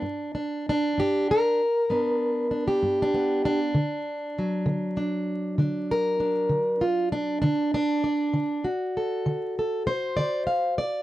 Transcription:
steel-string acoustic guitar
Already playing: D4
0.02 G2
0.35 D4
0.69 D4
0.98 G2 G4
1.31 A#4
1.90 G2 B3 D4
2.51 D4
2.68 G4
2.83 G2
3.02 D4
3.14 B3
3.45 D4
3.75 D3
4.39 F#3
4.66 D3
4.97 D4
5.58 D3 D4
5.91 A#4
6.20 D4
6.49 D3
6.81 F4
7.12 D4
7.42 D3 D4
7.74 D4
8.04 D5
8.33 D3
8.64 F#4
8.97 A4
9.26 D3
9.59 A4
9.87 C5
10.17 D3 D5
10.47 F5
10.78 D5

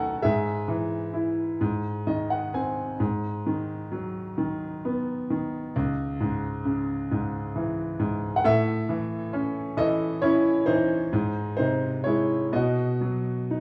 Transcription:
grand piano
Already playing: F#2 D#3 F#3 A3 F#4 G#4 A4 B4 D#5 E5 F#5 G#5
0.22 G#2 G#4 E5
0.68 E3
1.14 E4
1.61 G#2
2.07 D#3 D#5
2.31 F#5
2.54 C4 G#5
3.00 G#2
3.46 D#3
3.91 F#3
4.38 D#3
4.85 B3
5.30 D#3
5.76 C#2
6.20 G#2
6.65 C#3
7.11 G#2
7.56 E3
7.99 G#2
8.36 F#5
8.44 A2 A4 E5
8.89 E3
9.33 C#4
9.77 E3 A4 D#5
10.22 C#4 E4 C#5
10.66 E3 D#4 C5
11.13 G#2
11.57 C3 D#4 C5
12.04 G#3 E4 C#5
12.53 B2 F#4 D#5
13.01 F#3
13.51 D#4

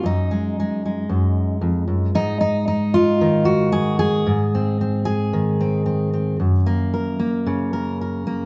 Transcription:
steel-string acoustic guitar
0.03 F#2 D#4
0.31 G#3
0.60 G#3
0.86 G#3
1.09 F#2
1.61 F2
1.88 F#2
2.15 G#2 D#4
2.41 D#4
2.68 D#4
2.94 F4
3.21 D#3
3.45 F#4
3.72 G#4
3.99 G#4
4.26 G#2
4.55 C4
4.81 C4
5.05 G#4
5.33 D#3
5.61 C4
5.86 C4
6.14 C4
6.40 F#2
6.66 A#3
6.94 A#4
7.19 A#3
7.46 C#3
7.73 A#4
8.01 A#4
8.27 A#3

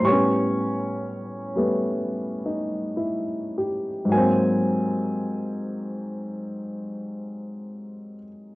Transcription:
upright piano
0.00 A2 G3
0.05 B3 C#5 C#6
0.12 C#4
1.55 G3 A3 B3
2.46 D#4
2.97 E4
3.58 G4
4.05 G#2 F#3
4.12 A#3 G#5
4.18 C4

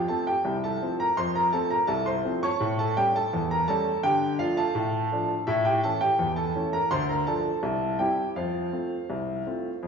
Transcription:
grand piano
0.08 F3 A3 C4 A4 A5
0.27 G4 G5
0.45 C2
0.64 A4 A5
0.81 F3 A3 C4
1.00 A#4 A#5
1.17 F2 C5 C6
1.35 A#4 A#5
1.53 F3 A3 C4 A4 A5
1.70 A#4 A#5
1.87 C2 A4 A5
2.06 C5 C6
2.25 F3 A3 C4
2.43 C#5 A5 C#6
2.60 A2
2.79 A4 A5
2.96 G3 A3 C#4 G4 G5
3.16 A4 A5
3.33 E2
3.51 A#4 A#5
3.68 G3 A3 C#4 A4 A5
4.03 D3 G4 G5
4.39 F3 A3 D4 F4 F5
4.57 A4 F5 A5
4.75 A2
5.12 F3 A3 D4
5.47 A2 E4 E5
5.65 G4 G5
5.84 E3 A3 C#4 A4 A5
6.01 G4 G5
6.19 E2
6.36 A4 A5
6.55 E3 A3 C#4
6.73 A#4 A#5
6.91 D2 C5 C6
7.09 A#4 A#5
7.27 F3 A3 D4 A4 A5
7.63 C2
7.99 G3 C4 E4 G4 G5
8.36 F2 F4 C5 F5
8.73 A3 C4 F4
9.10 C2
9.47 A3 C4 F4
9.83 F2

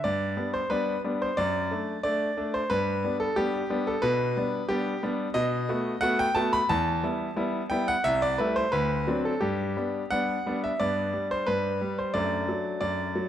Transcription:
grand piano
0.04 G2 D5
0.37 G3 B3 D4
0.54 C5
0.70 G3 B3 D4 B4
1.04 G3 B3 D4
1.22 C5
1.37 F#2 D5
1.71 A3 D4
2.03 A3 D4 D5
2.37 A3 D4
2.54 C5
2.70 G2 B4
3.04 G3 B3 D4
3.20 A4
3.36 G3 B3 D4 G4
3.70 G3 B3 D4
3.87 A4
4.02 B2 B4
4.36 G3 B3 D4
4.68 G3 B3 D4 G4
5.03 G3 B3 D4
5.34 B2 D#5
5.69 A3 B3 F#4
6.01 A3 B3 F#4 F#5
6.19 G5
6.35 A3 B3 F#4 A5
6.53 B5
6.69 E2 A5
7.03 G3 B3 E4
7.36 G3 B3 E4
7.70 G3 B3 E4 G5
7.88 F#5
8.04 C2 E5
8.22 D5
8.38 G3 A3 E4 B4
8.56 C5
8.72 D2 B4
9.08 F#3 C4 D4
9.25 A4
9.41 G2 G4
9.77 G3 B3 D4
10.10 G3 B3 D4 F#5
10.46 G3 B3 D4
10.64 E5
10.79 G2 B3 D4 D5
11.14 G3
11.31 C5
11.47 G2 B4
11.81 G3
11.99 C5
12.14 F#2 A3 D4 D5
12.49 F#3
12.81 F#2 D5
13.16 F#3

